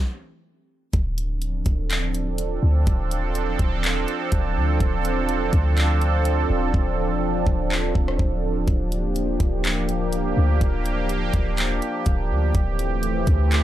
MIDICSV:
0, 0, Header, 1, 4, 480
1, 0, Start_track
1, 0, Key_signature, -1, "minor"
1, 0, Tempo, 483871
1, 927, Time_signature, 4, 2, 24, 8
1, 13524, End_track
2, 0, Start_track
2, 0, Title_t, "Analog synth pad"
2, 0, Program_c, 0, 89
2, 928, Note_on_c, 0, 53, 92
2, 928, Note_on_c, 0, 60, 78
2, 928, Note_on_c, 0, 62, 79
2, 928, Note_on_c, 0, 69, 99
2, 8567, Note_off_c, 0, 69, 0
2, 8568, Note_off_c, 0, 60, 0
2, 8606, Note_on_c, 0, 58, 81
2, 8606, Note_on_c, 0, 67, 95
2, 12407, Note_off_c, 0, 53, 0
2, 12407, Note_off_c, 0, 62, 0
2, 12408, Note_off_c, 0, 58, 0
2, 12445, Note_on_c, 0, 60, 81
2, 12446, Note_on_c, 0, 52, 84
2, 12446, Note_on_c, 0, 57, 84
2, 13524, Note_off_c, 0, 52, 0
2, 13524, Note_off_c, 0, 57, 0
2, 13524, Note_off_c, 0, 60, 0
2, 13524, Note_off_c, 0, 67, 0
2, 13524, End_track
3, 0, Start_track
3, 0, Title_t, "808-style bass"
3, 0, Program_c, 1, 38
3, 928, Note_on_c, 1, 26, 116
3, 1618, Note_off_c, 1, 26, 0
3, 1647, Note_on_c, 1, 26, 105
3, 2568, Note_off_c, 1, 26, 0
3, 2606, Note_on_c, 1, 38, 106
3, 2837, Note_off_c, 1, 38, 0
3, 2848, Note_on_c, 1, 26, 110
3, 3538, Note_off_c, 1, 26, 0
3, 3566, Note_on_c, 1, 26, 109
3, 4027, Note_off_c, 1, 26, 0
3, 4288, Note_on_c, 1, 26, 110
3, 4526, Note_on_c, 1, 38, 105
3, 4541, Note_off_c, 1, 26, 0
3, 4754, Note_off_c, 1, 38, 0
3, 4767, Note_on_c, 1, 26, 112
3, 5458, Note_off_c, 1, 26, 0
3, 5486, Note_on_c, 1, 38, 113
3, 6408, Note_off_c, 1, 38, 0
3, 6446, Note_on_c, 1, 26, 107
3, 6677, Note_off_c, 1, 26, 0
3, 6687, Note_on_c, 1, 26, 110
3, 7047, Note_on_c, 1, 28, 93
3, 7062, Note_off_c, 1, 26, 0
3, 7389, Note_off_c, 1, 28, 0
3, 7406, Note_on_c, 1, 26, 112
3, 7867, Note_off_c, 1, 26, 0
3, 7889, Note_on_c, 1, 26, 108
3, 8118, Note_off_c, 1, 26, 0
3, 8128, Note_on_c, 1, 26, 114
3, 8588, Note_off_c, 1, 26, 0
3, 8607, Note_on_c, 1, 26, 112
3, 9298, Note_off_c, 1, 26, 0
3, 9326, Note_on_c, 1, 26, 110
3, 10248, Note_off_c, 1, 26, 0
3, 10287, Note_on_c, 1, 38, 106
3, 10517, Note_off_c, 1, 38, 0
3, 10528, Note_on_c, 1, 26, 110
3, 11218, Note_off_c, 1, 26, 0
3, 11246, Note_on_c, 1, 26, 109
3, 11707, Note_off_c, 1, 26, 0
3, 11968, Note_on_c, 1, 26, 109
3, 12206, Note_on_c, 1, 38, 98
3, 12221, Note_off_c, 1, 26, 0
3, 12434, Note_off_c, 1, 38, 0
3, 12447, Note_on_c, 1, 26, 115
3, 13138, Note_off_c, 1, 26, 0
3, 13167, Note_on_c, 1, 38, 107
3, 13524, Note_off_c, 1, 38, 0
3, 13524, End_track
4, 0, Start_track
4, 0, Title_t, "Drums"
4, 927, Note_on_c, 9, 42, 68
4, 928, Note_on_c, 9, 36, 117
4, 1026, Note_off_c, 9, 42, 0
4, 1027, Note_off_c, 9, 36, 0
4, 1169, Note_on_c, 9, 42, 85
4, 1268, Note_off_c, 9, 42, 0
4, 1405, Note_on_c, 9, 42, 69
4, 1504, Note_off_c, 9, 42, 0
4, 1645, Note_on_c, 9, 42, 68
4, 1647, Note_on_c, 9, 36, 90
4, 1744, Note_off_c, 9, 42, 0
4, 1746, Note_off_c, 9, 36, 0
4, 1890, Note_on_c, 9, 42, 84
4, 1896, Note_on_c, 9, 39, 113
4, 1989, Note_off_c, 9, 42, 0
4, 1995, Note_off_c, 9, 39, 0
4, 2128, Note_on_c, 9, 42, 61
4, 2227, Note_off_c, 9, 42, 0
4, 2364, Note_on_c, 9, 42, 90
4, 2463, Note_off_c, 9, 42, 0
4, 2846, Note_on_c, 9, 42, 65
4, 2847, Note_on_c, 9, 36, 118
4, 2945, Note_off_c, 9, 42, 0
4, 2947, Note_off_c, 9, 36, 0
4, 3089, Note_on_c, 9, 42, 86
4, 3188, Note_off_c, 9, 42, 0
4, 3325, Note_on_c, 9, 42, 71
4, 3424, Note_off_c, 9, 42, 0
4, 3564, Note_on_c, 9, 42, 70
4, 3566, Note_on_c, 9, 36, 93
4, 3664, Note_off_c, 9, 42, 0
4, 3665, Note_off_c, 9, 36, 0
4, 3809, Note_on_c, 9, 42, 83
4, 3815, Note_on_c, 9, 39, 114
4, 3908, Note_off_c, 9, 42, 0
4, 3915, Note_off_c, 9, 39, 0
4, 4048, Note_on_c, 9, 42, 64
4, 4147, Note_off_c, 9, 42, 0
4, 4284, Note_on_c, 9, 42, 89
4, 4288, Note_on_c, 9, 36, 99
4, 4383, Note_off_c, 9, 42, 0
4, 4387, Note_off_c, 9, 36, 0
4, 4766, Note_on_c, 9, 42, 68
4, 4767, Note_on_c, 9, 36, 109
4, 4865, Note_off_c, 9, 42, 0
4, 4866, Note_off_c, 9, 36, 0
4, 5009, Note_on_c, 9, 42, 81
4, 5108, Note_off_c, 9, 42, 0
4, 5244, Note_on_c, 9, 42, 73
4, 5344, Note_off_c, 9, 42, 0
4, 5484, Note_on_c, 9, 42, 72
4, 5486, Note_on_c, 9, 36, 90
4, 5584, Note_off_c, 9, 42, 0
4, 5585, Note_off_c, 9, 36, 0
4, 5729, Note_on_c, 9, 42, 80
4, 5735, Note_on_c, 9, 39, 112
4, 5828, Note_off_c, 9, 42, 0
4, 5834, Note_off_c, 9, 39, 0
4, 5967, Note_on_c, 9, 42, 65
4, 6066, Note_off_c, 9, 42, 0
4, 6203, Note_on_c, 9, 42, 90
4, 6302, Note_off_c, 9, 42, 0
4, 6687, Note_on_c, 9, 36, 110
4, 6786, Note_off_c, 9, 36, 0
4, 7406, Note_on_c, 9, 36, 94
4, 7505, Note_off_c, 9, 36, 0
4, 7656, Note_on_c, 9, 39, 115
4, 7755, Note_off_c, 9, 39, 0
4, 7889, Note_on_c, 9, 36, 99
4, 7989, Note_off_c, 9, 36, 0
4, 8017, Note_on_c, 9, 37, 98
4, 8116, Note_off_c, 9, 37, 0
4, 8128, Note_on_c, 9, 36, 100
4, 8227, Note_off_c, 9, 36, 0
4, 8606, Note_on_c, 9, 42, 69
4, 8607, Note_on_c, 9, 36, 111
4, 8705, Note_off_c, 9, 42, 0
4, 8706, Note_off_c, 9, 36, 0
4, 8849, Note_on_c, 9, 42, 83
4, 8948, Note_off_c, 9, 42, 0
4, 9085, Note_on_c, 9, 42, 71
4, 9184, Note_off_c, 9, 42, 0
4, 9325, Note_on_c, 9, 42, 69
4, 9326, Note_on_c, 9, 36, 95
4, 9424, Note_off_c, 9, 42, 0
4, 9426, Note_off_c, 9, 36, 0
4, 9570, Note_on_c, 9, 42, 87
4, 9576, Note_on_c, 9, 39, 110
4, 9669, Note_off_c, 9, 42, 0
4, 9676, Note_off_c, 9, 39, 0
4, 9808, Note_on_c, 9, 42, 61
4, 9907, Note_off_c, 9, 42, 0
4, 10044, Note_on_c, 9, 42, 88
4, 10144, Note_off_c, 9, 42, 0
4, 10527, Note_on_c, 9, 42, 68
4, 10528, Note_on_c, 9, 36, 110
4, 10626, Note_off_c, 9, 42, 0
4, 10627, Note_off_c, 9, 36, 0
4, 10769, Note_on_c, 9, 42, 78
4, 10868, Note_off_c, 9, 42, 0
4, 11005, Note_on_c, 9, 42, 70
4, 11104, Note_off_c, 9, 42, 0
4, 11244, Note_on_c, 9, 42, 72
4, 11246, Note_on_c, 9, 36, 91
4, 11343, Note_off_c, 9, 42, 0
4, 11345, Note_off_c, 9, 36, 0
4, 11489, Note_on_c, 9, 42, 88
4, 11496, Note_on_c, 9, 39, 108
4, 11589, Note_off_c, 9, 42, 0
4, 11595, Note_off_c, 9, 39, 0
4, 11727, Note_on_c, 9, 42, 63
4, 11827, Note_off_c, 9, 42, 0
4, 11963, Note_on_c, 9, 42, 90
4, 11968, Note_on_c, 9, 36, 101
4, 12063, Note_off_c, 9, 42, 0
4, 12067, Note_off_c, 9, 36, 0
4, 12446, Note_on_c, 9, 42, 67
4, 12447, Note_on_c, 9, 36, 114
4, 12545, Note_off_c, 9, 42, 0
4, 12546, Note_off_c, 9, 36, 0
4, 12689, Note_on_c, 9, 42, 83
4, 12788, Note_off_c, 9, 42, 0
4, 12925, Note_on_c, 9, 42, 74
4, 13024, Note_off_c, 9, 42, 0
4, 13165, Note_on_c, 9, 42, 71
4, 13166, Note_on_c, 9, 36, 92
4, 13264, Note_off_c, 9, 42, 0
4, 13266, Note_off_c, 9, 36, 0
4, 13410, Note_on_c, 9, 42, 85
4, 13416, Note_on_c, 9, 39, 116
4, 13509, Note_off_c, 9, 42, 0
4, 13516, Note_off_c, 9, 39, 0
4, 13524, End_track
0, 0, End_of_file